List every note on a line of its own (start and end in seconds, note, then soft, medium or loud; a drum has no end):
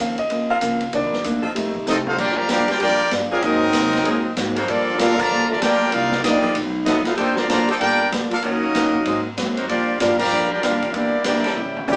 0.00 0.29 D#2 loud
0.00 0.19 C#3 medium
0.00 0.19 F3 medium
0.00 0.19 A#3 medium
0.00 0.19 C4 medium
0.00 0.18 F5 medium
0.18 0.48 D#5 medium
0.18 kick medium
0.18 ride medium
0.30 0.61 F2 loud
0.30 0.50 C#3 medium
0.30 0.51 F3 medium
0.30 0.51 A#3 medium
0.30 0.51 C4 medium
0.30 kick soft
0.30 ride medium
0.50 0.58 F3 loud
0.50 0.58 C4 medium
0.50 0.58 D#4 medium
0.50 0.58 A#4 loud
0.50 0.90 F5 loud
0.61 0.92 C#2 medium
0.61 0.81 C#3 medium
0.61 0.82 F3 medium
0.61 0.82 A#3 medium
0.61 0.82 C4 medium
0.61 kick soft
0.61 hi-hat pedal medium
0.61 ride medium
0.80 ride medium
0.92 1.03 C2 loud
0.92 1.13 C3 medium
0.92 1.13 D#3 medium
0.92 1.16 D#3 medium
0.92 1.14 A#3 medium
0.92 1.16 A#3 soft
0.92 1.16 D4 medium
0.92 1.14 D4 medium
0.92 1.23 D5 medium
0.92 kick soft
0.92 ride medium
1.03 1.13 A#1 medium
1.13 1.23 G1 medium
1.13 snare medium
1.23 1.55 D2 loud
1.23 1.44 C3 medium
1.23 1.44 D#3 medium
1.23 1.45 A#3 medium
1.23 1.45 D4 medium
1.23 kick soft
1.23 hi-hat pedal medium
1.23 ride medium
1.42 1.51 F3 loud
1.42 1.51 C4 medium
1.42 1.51 D#4 medium
1.42 1.51 A4 loud
1.42 kick medium
1.55 1.75 F2 medium
1.55 1.67 F2 medium
1.55 1.76 D#3 medium
1.55 2.14 G3 medium
1.55 2.15 A3 soft
1.55 1.76 A3 medium
1.55 1.76 C4 medium
1.55 2.15 D#4 medium
1.55 kick soft
1.55 ride medium
1.67 1.75 D#2 medium
1.75 1.86 C2 medium
1.75 kick medium
1.86 2.17 C2 medium
1.86 2.07 F2 medium
1.86 2.07 D#3 medium
1.86 1.95 A3 medium
1.86 2.08 A3 medium
1.86 1.95 C4 medium
1.86 2.08 C4 medium
1.86 1.97 C4 medium
1.86 1.95 D#4 medium
1.86 1.97 F4 medium
1.86 1.97 A4 medium
1.86 1.97 D#5 loud
1.86 snare medium
1.86 hi-hat pedal medium
2.05 2.16 A3 medium
2.05 2.16 C4 medium
2.05 2.18 D#4 medium
2.05 2.16 F4 medium
2.05 2.18 A4 medium
2.05 2.18 C5 medium
2.05 2.18 F5 loud
2.05 floor tom medium
2.16 2.48 D2 medium
2.16 2.38 A#2 medium
2.16 2.35 G3 medium
2.16 2.38 G3 medium
2.16 2.36 D4 medium
2.16 2.38 D4 medium
2.16 2.37 F4 loud
2.16 2.39 F4 medium
2.16 2.36 G4 medium
2.16 2.37 A#4 medium
2.16 2.36 D5 medium
2.16 2.37 G5 loud
2.16 kick medium
2.16 crash medium
2.36 2.46 F3 medium
2.36 2.46 G3 medium
2.36 2.46 A#3 medium
2.36 2.49 G4 medium
2.36 2.49 D5 medium
2.36 2.49 F5 medium
2.36 2.49 A#5 loud
2.47 2.80 D#2 medium
2.47 2.69 A#2 medium
2.47 2.66 F3 medium
2.47 2.66 G3 medium
2.47 2.70 G3 medium
2.47 2.66 A#3 medium
2.47 2.70 D4 medium
2.47 kick soft
2.47 snare medium
2.47 hi-hat pedal medium
2.47 ride medium
2.51 2.70 F4 medium
2.51 2.68 G4 loud
2.51 2.68 D5 loud
2.51 2.68 F5 loud
2.51 2.68 A#5 loud
2.67 2.77 G3 medium
2.67 2.77 D4 medium
2.67 2.77 G4 medium
2.67 snare medium
2.67 ride medium
2.71 2.80 F4 medium
2.71 2.80 A#4 medium
2.71 2.80 D5 medium
2.71 2.80 G5 loud
2.78 3.11 F2 loud
2.78 3.01 A#2 medium
2.78 2.93 F3 loud
2.78 3.08 G3 medium
2.78 2.93 A#3 medium
2.78 3.08 D4 medium
2.78 2.93 D4 medium
2.78 3.10 F4 loud
2.78 3.08 G4 loud
2.78 2.93 G4 loud
2.78 3.10 A#4 loud
2.78 3.10 D5 loud
2.78 3.10 G5 loud
2.78 kick soft
2.78 ride medium
2.82 3.02 G3 medium
2.82 3.02 D4 medium
2.82 3.02 F4 medium
3.11 3.42 G2 loud
3.11 3.32 A#2 medium
3.11 3.32 G3 medium
3.11 3.33 D4 medium
3.11 3.33 F4 medium
3.11 kick soft
3.11 snare medium
3.11 hi-hat pedal medium
3.11 ride medium
3.29 3.72 F#3 loud
3.29 3.41 G3 medium
3.29 3.72 A#3 loud
3.29 3.72 C4 loud
3.29 3.41 D4 medium
3.29 3.42 D4 medium
3.29 3.41 F4 medium
3.29 3.43 G4 medium
3.29 3.72 G#4 loud
3.29 3.41 A#4 medium
3.29 3.42 F5 loud
3.42 3.73 G#2 loud
3.42 3.63 G#2 medium
3.42 4.36 F#3 medium
3.42 3.64 F#3 medium
3.42 3.64 A#3 medium
3.42 4.36 C4 medium
3.42 4.37 C4 loud
3.42 3.64 C4 medium
3.42 4.36 D#4 loud
3.42 4.36 F#4 medium
3.42 4.36 A#4 loud
3.42 4.37 D#5 loud
3.42 kick soft
3.42 ride medium
3.73 3.95 G#2 medium
3.73 4.04 C3 loud
3.73 3.95 F#3 medium
3.73 3.95 A#3 medium
3.73 3.95 C4 medium
3.73 kick soft
3.73 snare medium
3.73 hi-hat pedal medium
3.73 ride medium
3.85 snare soft
3.93 snare medium
3.93 ride medium
4.04 4.26 G#2 medium
4.04 4.36 A#2 loud
4.04 4.18 F#3 medium
4.04 4.26 F#3 medium
4.04 4.18 A#3 medium
4.04 4.26 A#3 medium
4.04 4.18 C4 medium
4.04 4.27 C4 medium
4.04 4.18 G#4 loud
4.04 kick soft
4.04 ride medium
4.37 4.67 G#2 loud
4.37 4.57 G#2 medium
4.37 4.58 F#3 medium
4.37 4.58 A#3 medium
4.37 4.58 C4 medium
4.37 kick soft
4.37 snare medium
4.37 hi-hat pedal medium
4.37 ride medium
4.55 4.67 D#3 medium
4.55 4.67 F#3 medium
4.55 4.97 G3 loud
4.55 4.97 A#3 medium
4.55 4.67 A#3 medium
4.55 4.67 C4 medium
4.55 4.67 D#4 medium
4.55 4.97 F4 medium
4.55 4.67 F#4 medium
4.55 4.97 A4 loud
4.55 4.67 C5 medium
4.55 ride medium
4.67 4.98 G2 medium
4.67 4.99 F3 medium
4.67 4.88 G3 medium
4.67 4.96 A#3 medium
4.67 4.88 A#3 medium
4.67 5.00 A#3 medium
4.67 4.96 D4 medium
4.67 4.89 F4 medium
4.67 5.00 F4 medium
4.67 4.98 A4 medium
4.67 4.89 A4 medium
4.67 5.00 D5 loud
4.67 kick soft
4.67 ride medium
4.97 5.29 F2 loud
4.97 5.12 G3 loud
4.97 5.20 G3 medium
4.97 5.15 A#3 medium
4.97 5.12 A#3 loud
4.97 5.20 A#3 medium
4.97 5.17 D4 medium
4.97 5.19 D4 medium
4.97 5.18 F4 medium
4.97 5.12 F4 loud
4.97 5.20 F4 medium
4.97 5.12 A4 loud
4.97 5.18 A4 loud
4.97 5.20 A4 medium
4.97 5.19 A#4 loud
4.97 5.19 F5 loud
4.97 kick soft
4.97 snare medium
4.97 hi-hat pedal medium
4.97 ride medium
5.16 5.46 D3 loud
5.16 5.46 F3 loud
5.16 5.48 A#3 medium
5.16 kick loud
5.16 crash medium
5.20 5.49 F4 loud
5.20 5.49 D5 loud
5.20 5.49 A5 loud
5.20 5.51 A#5 loud
5.30 5.61 D#2 loud
5.30 5.51 G3 medium
5.30 5.51 A#3 medium
5.30 5.52 F4 medium
5.30 5.52 A4 medium
5.47 5.60 D3 medium
5.47 5.60 F3 medium
5.47 5.60 A3 medium
5.47 5.60 F4 medium
5.47 5.61 A#4 medium
5.47 5.60 D5 medium
5.47 5.61 A5 medium
5.58 5.92 D2 loud
5.58 5.89 A#3 loud
5.58 5.91 D4 loud
5.58 5.93 F4 medium
5.58 5.91 G4 medium
5.58 5.92 A#4 loud
5.58 5.90 D5 medium
5.58 5.93 G5 loud
5.58 kick soft
5.58 snare medium
5.58 hi-hat pedal medium
5.58 ride medium
5.63 5.83 G3 medium
5.63 5.83 A#3 medium
5.63 5.83 F4 medium
5.63 5.83 A4 medium
5.90 6.23 C2 loud
5.90 6.13 C3 medium
5.90 6.20 G3 medium
5.90 6.20 A#3 medium
5.90 6.24 D#4 medium
5.90 6.23 F4 medium
5.90 6.24 A#4 medium
5.90 6.21 D5 medium
5.90 6.24 F5 loud
5.90 kick soft
5.90 ride medium
5.94 6.14 D#3 medium
5.94 6.14 A#3 medium
5.94 6.15 D4 medium
6.12 snare medium
6.21 6.55 A#1 loud
6.21 6.45 C3 medium
6.21 6.56 G3 medium
6.21 6.56 A#3 medium
6.21 6.57 A#3 medium
6.21 6.56 D#4 medium
6.21 6.58 G4 medium
6.21 6.57 D5 medium
6.21 6.58 D#5 loud
6.21 kick soft
6.21 snare medium
6.21 hi-hat pedal medium
6.21 ride medium
6.25 6.45 D#3 medium
6.25 6.45 A#3 medium
6.25 6.45 D4 medium
6.42 6.51 F3 loud
6.42 6.51 B3 loud
6.42 6.51 D#4 medium
6.42 6.51 A4 loud
6.55 6.86 B1 loud
6.55 6.76 B2 medium
6.55 6.76 F3 medium
6.55 6.77 A3 medium
6.55 6.77 D#4 medium
6.55 kick soft
6.55 ride medium
6.84 7.17 F#1 medium
6.84 7.07 B2 medium
6.84 7.07 F3 medium
6.84 7.02 F#3 medium
6.84 7.02 A3 medium
6.84 7.04 B3 medium
6.84 7.03 D#4 medium
6.84 7.04 F#4 medium
6.84 7.04 A4 medium
6.84 7.04 D#5 medium
6.84 kick soft
6.84 snare medium
6.84 hi-hat pedal medium
6.84 ride medium
6.88 7.08 A3 medium
6.88 7.08 D#4 medium
7.03 7.16 F#3 medium
7.03 7.16 A3 medium
7.03 7.16 D#4 medium
7.03 7.16 F4 medium
7.03 7.16 A4 medium
7.03 7.17 B4 medium
7.03 7.17 F5 loud
7.03 snare medium
7.03 ride medium
7.16 7.36 A#1 medium
7.16 7.31 D3 medium
7.16 7.38 A#3 medium
7.16 7.31 A#3 medium
7.16 7.30 C4 medium
7.16 7.38 D4 medium
7.16 7.36 D#4 medium
7.16 7.35 G4 medium
7.16 7.30 A4 loud
7.16 7.36 A4 medium
7.16 7.39 A4 medium
7.16 7.35 C5 medium
7.16 7.39 C5 medium
7.16 7.35 G5 medium
7.16 kick soft
7.16 ride medium
7.36 7.46 D3 medium
7.36 7.46 F3 medium
7.36 7.46 A#3 medium
7.36 7.49 F4 medium
7.36 7.49 C5 medium
7.36 7.49 D5 medium
7.36 7.48 A#5 medium
7.36 muted upright bass stroke soft
7.36 snare medium
7.47 7.67 A1 loud
7.47 7.66 D3 medium
7.47 7.66 F3 medium
7.47 7.66 A#3 medium
7.47 7.69 A#3 medium
7.47 7.69 D4 medium
7.47 7.68 F4 medium
7.47 7.70 A4 medium
7.47 7.70 C5 medium
7.47 7.68 C5 medium
7.47 7.68 D5 medium
7.47 7.67 A#5 loud
7.47 kick soft
7.47 snare medium
7.47 hi-hat pedal medium
7.47 ride medium
7.66 8.09 G3 loud
7.66 8.09 A#3 medium
7.66 7.75 D#4 medium
7.66 8.09 F4 medium
7.66 7.72 G4 medium
7.66 8.09 A4 loud
7.66 7.75 C5 medium
7.66 7.75 G5 medium
7.66 muted upright bass stroke soft
7.66 ride medium
7.70 7.75 A4 medium
7.78 8.11 G1 loud
7.78 8.01 G3 medium
7.78 8.09 A#3 medium
7.78 8.01 A#3 medium
7.78 8.09 D4 medium
7.78 8.10 F4 medium
7.78 8.02 F4 medium
7.78 8.09 G4 medium
7.78 8.02 A4 medium
7.78 8.10 A#4 medium
7.78 8.10 D5 medium
7.78 8.10 G5 loud
7.78 kick soft
7.78 ride medium
8.12 8.42 D2 loud
8.12 8.33 G3 medium
8.12 8.33 A#3 medium
8.12 8.33 F4 medium
8.12 8.33 A4 medium
8.12 kick soft
8.12 snare medium
8.12 hi-hat pedal medium
8.12 ride medium
8.29 8.35 A#3 medium
8.29 8.35 D4 medium
8.29 8.38 D4 medium
8.29 8.35 F4 medium
8.29 8.37 A4 medium
8.29 8.37 A#4 medium
8.29 8.38 F5 medium
8.29 ride medium
8.42 8.74 D#2 loud
8.42 8.64 D#3 medium
8.42 9.33 F#3 medium
8.42 8.90 F#3 loud
8.42 9.33 A#3 medium
8.42 8.64 A#3 medium
8.42 8.89 C#4 medium
8.42 9.02 C#4 medium
8.42 8.65 C#4 medium
8.42 9.33 D#4 medium
8.42 8.89 D#4 medium
8.42 9.33 F#4 medium
8.42 8.65 F#4 medium
8.42 8.89 A#4 loud
8.42 9.33 A#4 medium
8.42 9.33 D#5 loud
8.42 kick soft
8.42 ride medium
8.75 8.93 A#2 loud
8.75 8.95 D#3 medium
8.75 8.95 A#3 medium
8.75 8.95 C#4 medium
8.75 8.96 F#4 medium
8.75 kick soft
8.75 snare medium
8.75 hi-hat pedal medium
8.75 ride medium
8.94 muted upright bass stroke soft
8.94 kick medium
9.05 9.26 G#2 medium
9.05 9.36 G#2 loud
9.05 9.26 F#3 medium
9.05 9.19 G#3 medium
9.05 9.27 A#3 medium
9.05 9.27 C4 medium
9.05 9.19 C4 medium
9.05 9.19 F#4 medium
9.05 9.19 C5 medium
9.05 kick soft
9.05 ride medium
9.37 9.68 F#2 medium
9.37 9.57 G#2 medium
9.37 9.57 F#3 medium
9.37 9.58 A#3 medium
9.37 9.58 C4 medium
9.37 kick soft
9.37 snare medium
9.37 hi-hat pedal medium
9.37 ride medium
9.55 9.67 D#3 medium
9.55 9.67 F#3 medium
9.55 9.67 A#3 medium
9.55 9.67 C4 medium
9.55 9.67 D#4 medium
9.55 9.67 F#4 medium
9.55 9.67 C5 medium
9.55 ride medium
9.66 9.89 A#2 medium
9.66 9.99 A#2 loud
9.66 9.96 F3 medium
9.66 9.97 G3 medium
9.66 9.89 G3 medium
9.66 9.98 A#3 medium
9.66 9.97 D4 medium
9.66 9.89 D4 medium
9.66 9.98 F4 medium
9.66 9.98 G4 medium
9.66 9.98 D5 medium
9.66 kick soft
9.66 ride medium
9.70 9.90 F4 medium
9.99 10.30 G2 loud
9.99 10.20 A#2 medium
9.99 10.17 G3 medium
9.99 10.20 G3 medium
9.99 10.17 D4 medium
9.99 10.18 D4 medium
9.99 10.20 D4 medium
9.99 10.17 F4 medium
9.99 10.21 F4 medium
9.99 10.17 G4 medium
9.99 10.18 A#4 medium
9.99 10.18 F5 loud
9.99 kick soft
9.99 snare medium
9.99 hi-hat pedal medium
9.99 ride medium
10.19 10.48 F3 medium
10.19 10.48 G3 medium
10.19 10.48 A#3 medium
10.19 10.48 G4 loud
10.19 10.48 D5 loud
10.19 10.48 F5 medium
10.19 10.48 A#5 loud
10.19 kick loud
10.19 crash loud
10.31 10.61 F2 medium
10.31 10.52 A#2 medium
10.31 10.52 G3 medium
10.31 10.52 D4 medium
10.31 10.52 F4 medium
10.49 10.61 G3 medium
10.49 10.61 D4 medium
10.49 10.62 G4 medium
10.49 10.62 A#4 medium
10.49 10.63 G5 medium
10.54 10.64 F4 medium
10.54 10.64 D5 medium
10.62 10.93 D#2 loud
10.62 10.83 A#2 medium
10.62 10.93 G3 loud
10.62 10.92 G3 medium
10.62 10.83 G3 medium
10.62 10.93 D4 loud
10.62 10.92 D4 medium
10.62 10.94 D4 medium
10.62 10.83 D4 medium
10.62 10.93 F4 loud
10.62 10.94 F4 medium
10.62 10.83 F4 medium
10.62 10.94 G4 medium
10.62 10.93 A#4 loud
10.62 10.94 A#4 medium
10.62 10.94 F5 loud
10.62 kick soft
10.62 snare medium
10.62 hi-hat pedal medium
10.62 ride medium
10.82 kick medium
10.82 ride medium
10.93 11.24 E2 medium
10.93 11.14 E3 medium
10.93 11.25 G3 medium
10.93 11.24 A#3 medium
10.93 11.25 A#3 medium
10.93 11.15 A#3 medium
10.93 11.23 D4 medium
10.93 11.15 D4 medium
10.93 11.25 E4 medium
10.93 11.25 G4 medium
10.93 11.15 G4 medium
10.93 11.25 D5 medium
10.93 kick soft
10.93 ride medium
11.24 11.43 D2 medium
11.24 11.45 E3 medium
11.24 11.56 A#3 medium
11.24 11.46 A#3 medium
11.24 11.56 D4 medium
11.24 11.46 D4 medium
11.24 11.88 E4 medium
11.24 11.87 G4 medium
11.24 11.46 G4 medium
11.24 11.57 A#4 medium
11.24 11.57 D5 medium
11.24 11.88 G5 loud
11.24 kick soft
11.24 snare medium
11.24 hi-hat pedal medium
11.24 ride medium
11.36 snare soft
11.44 11.53 G3 loud
11.44 11.53 C#4 loud
11.44 11.53 E4 medium
11.44 11.53 A4 loud
11.44 muted upright bass stroke soft
11.44 snare medium
11.44 ride medium
11.55 11.86 A1 medium
11.55 11.76 A2 medium
11.55 11.77 G3 medium
11.55 11.77 C#4 medium
11.55 11.77 E4 medium
11.55 mid tom medium
11.76 floor tom medium
11.87 11.96 C#2 loud
11.87 11.96 A2 medium
11.87 11.96 C#3 medium
11.87 11.96 E3 medium
11.87 11.96 G3 medium
11.87 11.96 A3 medium
11.87 11.96 C#4 medium
11.87 11.96 E4 medium
11.87 11.96 G4 medium
11.87 floor tom medium
11.87 hi-hat pedal medium